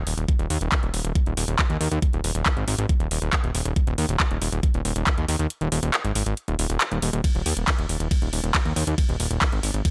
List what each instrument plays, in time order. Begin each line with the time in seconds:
0.07 analog synth bass D#1, open hi-hat
0.18 analog synth bass D#1, closed hi-hat
0.28 kick, closed hi-hat
0.39 analog synth bass D#1, closed hi-hat
0.50 analog synth bass D#2, open hi-hat
0.61 analog synth bass D#1, closed hi-hat
0.72 kick, clap, closed hi-hat
0.83 analog synth bass D#1, closed hi-hat
0.94 analog synth bass D#1, open hi-hat
1.05 analog synth bass D#1, closed hi-hat
1.15 kick, closed hi-hat
1.26 analog synth bass D#1, closed hi-hat
1.37 analog synth bass D#1, open hi-hat
1.48 analog synth bass D#1, closed hi-hat
1.59 kick, clap, closed hi-hat
1.70 analog synth bass D#2, closed hi-hat
1.81 analog synth bass D#2, open hi-hat
1.92 analog synth bass D#2, closed hi-hat
2.02 kick, closed hi-hat
2.13 analog synth bass D#1, closed hi-hat
2.24 analog synth bass D#1, open hi-hat
2.35 analog synth bass D#1, closed hi-hat
2.46 kick, clap, closed hi-hat
2.57 analog synth bass G#1, closed hi-hat
2.68 analog synth bass G#1, open hi-hat
2.79 analog synth bass G#1, closed hi-hat
2.89 kick, closed hi-hat
3.00 analog synth bass D#1, closed hi-hat
3.11 analog synth bass D#1, open hi-hat
3.22 analog synth bass D#1, closed hi-hat
3.33 kick, clap, closed hi-hat
3.44 analog synth bass D#1, closed hi-hat
3.55 analog synth bass D#1, open hi-hat
3.65 analog synth bass D#1, closed hi-hat
3.76 kick, closed hi-hat
3.87 analog synth bass D#1, closed hi-hat
3.98 analog synth bass D#2, open hi-hat
4.09 analog synth bass D#1, closed hi-hat
4.20 kick, clap, closed hi-hat
4.31 analog synth bass D#1, closed hi-hat
4.42 analog synth bass D#1, open hi-hat
4.52 analog synth bass D#1, closed hi-hat
4.63 kick, closed hi-hat
4.74 analog synth bass D#1, closed hi-hat
4.85 analog synth bass D#1, open hi-hat
4.96 analog synth bass D#1, closed hi-hat
5.07 kick, clap, closed hi-hat
5.18 analog synth bass D#2, closed hi-hat
5.28 analog synth bass D#2, open hi-hat
5.39 analog synth bass D#2, closed hi-hat
5.50 closed hi-hat
5.61 analog synth bass D#1, closed hi-hat
5.72 analog synth bass D#1, open hi-hat
5.83 analog synth bass D#1, closed hi-hat
5.94 clap, closed hi-hat
6.05 analog synth bass G#1, closed hi-hat
6.15 analog synth bass G#1, open hi-hat
6.26 analog synth bass G#1, closed hi-hat
6.37 closed hi-hat
6.48 analog synth bass D#1, closed hi-hat
6.59 analog synth bass D#1, open hi-hat
6.70 analog synth bass D#1, closed hi-hat
6.81 clap, closed hi-hat
6.92 analog synth bass D#1, closed hi-hat
7.02 analog synth bass D#1, open hi-hat
7.13 analog synth bass D#1, closed hi-hat
7.24 kick, closed hi-hat, ride
7.35 analog synth bass D#1, closed hi-hat
7.46 analog synth bass D#2, open hi-hat
7.57 analog synth bass D#1, closed hi-hat
7.68 kick, clap, closed hi-hat, ride
7.78 analog synth bass D#1, closed hi-hat
7.89 analog synth bass D#1, open hi-hat
8.00 analog synth bass D#1, closed hi-hat
8.11 kick, closed hi-hat, ride
8.22 analog synth bass D#1, closed hi-hat
8.33 analog synth bass D#1, open hi-hat
8.44 analog synth bass D#1, closed hi-hat
8.55 kick, clap, closed hi-hat, ride
8.65 analog synth bass D#2, closed hi-hat
8.76 analog synth bass D#2, open hi-hat
8.87 analog synth bass D#2, closed hi-hat
8.98 kick, closed hi-hat, ride
9.09 analog synth bass D#1, closed hi-hat
9.20 analog synth bass D#1, open hi-hat
9.31 analog synth bass D#1, closed hi-hat
9.42 kick, clap, closed hi-hat, ride
9.52 analog synth bass G#1, closed hi-hat
9.63 analog synth bass G#1, open hi-hat
9.74 analog synth bass G#1, closed hi-hat
9.85 kick, closed hi-hat, ride